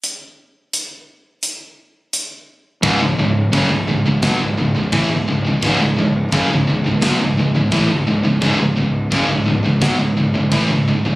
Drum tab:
CC |--------|x-x-x-x-|x-x-x-x-|x-x-x-x-|
HH |x-x-x-x-|--------|--------|--------|
SD |--------|----o---|----o---|----o---|
BD |--------|o-o-o-o-|o-o-o-o-|o-o-o-o-|